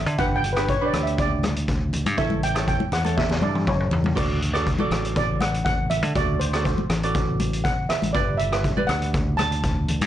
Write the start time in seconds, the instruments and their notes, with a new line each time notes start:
Already playing: steel pan E5
0.06 fingered electric bass D3, closed hi-hat
0.18 fingered electric bass G1, ukulele D4 G4 B4, steel pan F#5, kick, closed hi-hat
0.36 steel pan G5
0.44 closed hi-hat
0.53 ukulele G4, steel pan B4, cross-stick, closed hi-hat
0.57 ukulele D4 B4
0.69 steel pan C#5, kick, closed hi-hat
0.81 ukulele D4 G4 B4
0.86 steel pan D5
0.93 fingered electric bass D2, cross-stick, closed hi-hat, low conga
1.03 steel pan E5, closed hi-hat
1.18 steel pan D5, kick, closed hi-hat
1.43 cross-stick, closed hi-hat, high conga
1.56 closed hi-hat
1.68 kick, closed hi-hat
1.93 closed hi-hat, low conga
2.06 fingered electric bass G2, closed hi-hat, high conga
2.17 fingered electric bass A1, ukulele E4 A4 C#5, steel pan E5, kick, closed hi-hat
2.30 high conga
2.43 steel pan G5, closed hi-hat
2.54 ukulele E4 A4 C#5, cross-stick, closed hi-hat
2.68 steel pan G5, kick, closed hi-hat
2.80 high conga
2.92 fingered electric bass E2, steel pan F#5, cross-stick, closed hi-hat, low conga
3.05 ukulele E4 A4 C#5, closed hi-hat, high conga
3.17 steel pan E5, kick, snare
3.29 snare, low conga
3.42 fingered electric bass G2, steel pan D5, high tom, high conga
3.55 high tom
3.67 fingered electric bass F#2, steel pan C#5, kick, mid tom
3.80 mid tom
3.91 fingered electric bass E2, floor tom, low conga
4.04 floor tom, high conga
4.15 fingered electric bass D2, ukulele F#4 A4 D5, kick, closed hi-hat, crash
4.42 closed hi-hat
4.53 ukulele F#4 A4 D5, cross-stick, closed hi-hat
4.67 kick, closed hi-hat
4.79 ukulele F#4 A4 D5, high conga
4.91 fingered electric bass A1, cross-stick, closed hi-hat, low conga
5.05 closed hi-hat
5.16 steel pan D5, kick, closed hi-hat
5.41 steel pan F#5, cross-stick, closed hi-hat, high conga
5.54 closed hi-hat
5.65 steel pan F#5, kick, closed hi-hat
5.90 steel pan E5, closed hi-hat, low conga
6.03 fingered electric bass D3, closed hi-hat, high conga
6.15 fingered electric bass D2, ukulele F#4 A4 D5, steel pan D5, kick, closed hi-hat
6.40 steel pan C5, closed hi-hat
6.53 ukulele F#4 A4 D5, cross-stick, closed hi-hat
6.65 steel pan C5, kick, closed hi-hat
6.78 high conga
6.90 fingered electric bass A1, cross-stick, closed hi-hat, low conga
7.03 ukulele F#4 A4 D5, closed hi-hat
7.15 kick, closed hi-hat
7.40 closed hi-hat, high conga
7.53 closed hi-hat
7.64 steel pan F#5, kick, closed hi-hat
7.89 steel pan E5, cross-stick, closed hi-hat, low conga
8.02 fingered electric bass A1, closed hi-hat, high conga
8.13 fingered electric bass G1, ukulele G4 B4 D5, steel pan D5, kick, closed hi-hat
8.37 steel pan E5, closed hi-hat
8.52 ukulele G4 B4 E5, cross-stick, closed hi-hat
8.64 kick, closed hi-hat
8.77 ukulele G4 B4 D5, high conga
8.87 fingered electric bass D2, steel pan F#5, cross-stick, closed hi-hat, low conga
9.02 closed hi-hat
9.14 kick, closed hi-hat
9.37 steel pan A5, cross-stick, closed hi-hat, high conga
9.52 closed hi-hat
9.63 kick, closed hi-hat
9.88 closed hi-hat, low conga
10.01 fingered electric bass G2, closed hi-hat, high conga